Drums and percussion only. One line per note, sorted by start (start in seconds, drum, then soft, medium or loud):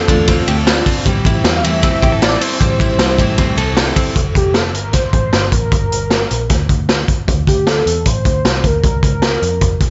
0.08 kick medium
0.08 ride medium
0.08 tambourine soft
0.27 kick medium
0.27 snare soft
0.27 ride medium
0.27 tambourine medium
0.47 ride medium
0.47 tambourine soft
0.67 snare loud
0.67 ride medium
0.67 tambourine loud
0.86 kick medium
0.86 open hi-hat medium
0.86 ride medium
0.86 tambourine medium
1.06 kick loud
1.06 hi-hat pedal medium
1.06 ride medium
1.06 tambourine soft
1.25 kick medium
1.25 ride medium
1.25 tambourine medium
1.44 snare loud
1.44 ride medium
1.44 tambourine loud
1.64 ride medium
1.64 tambourine soft
1.82 kick medium
1.82 snare soft
1.82 ride medium
1.82 tambourine medium
2.02 kick medium
2.02 ride medium
2.02 tambourine soft
2.22 snare loud
2.22 ride medium
2.22 tambourine loud
2.41 open hi-hat medium
2.41 ride medium
2.41 tambourine medium
2.61 kick loud
2.61 hi-hat pedal medium
2.61 ride medium
2.61 tambourine soft
2.80 kick loud
2.80 ride medium
2.80 tambourine medium
2.99 snare loud
2.99 ride medium
2.99 tambourine medium
3.19 kick medium
3.19 ride medium
3.19 tambourine soft
3.38 kick medium
3.38 snare soft
3.38 ride medium
3.38 tambourine medium
3.57 ride medium
3.57 tambourine medium
3.77 snare loud
3.77 ride medium
3.77 tambourine medium
3.96 kick medium
3.96 open hi-hat medium
3.96 ride medium
3.96 tambourine medium
4.16 kick loud
4.16 closed hi-hat medium
4.35 kick medium
4.35 closed hi-hat medium
4.54 snare medium
4.54 closed hi-hat medium
4.74 closed hi-hat medium
4.93 kick medium
4.93 snare soft
4.93 closed hi-hat medium
5.13 kick medium
5.13 closed hi-hat medium
5.33 snare loud
5.33 closed hi-hat medium
5.52 kick medium
5.52 closed hi-hat medium
5.72 kick loud
5.72 closed hi-hat medium
5.92 closed hi-hat medium
6.11 snare medium
6.11 closed hi-hat medium
6.31 closed hi-hat medium
6.49 kick medium
6.49 snare soft
6.49 closed hi-hat medium
6.69 kick medium
6.69 closed hi-hat medium
6.89 snare loud
6.89 closed hi-hat medium
7.08 kick medium
7.08 closed hi-hat medium
7.28 kick loud
7.28 closed hi-hat medium
7.47 kick medium
7.47 closed hi-hat medium
7.67 snare medium
7.67 closed hi-hat medium
7.87 closed hi-hat medium
8.05 kick medium
8.05 closed hi-hat medium
8.25 kick medium
8.25 closed hi-hat medium
8.45 snare loud
8.45 closed hi-hat medium
8.64 kick medium
8.64 closed hi-hat medium
8.84 kick loud
8.84 closed hi-hat medium
9.03 kick medium
9.03 closed hi-hat medium
9.22 snare medium
9.22 closed hi-hat medium
9.42 closed hi-hat medium
9.61 kick medium
9.61 closed hi-hat medium
9.80 kick medium
9.80 closed hi-hat medium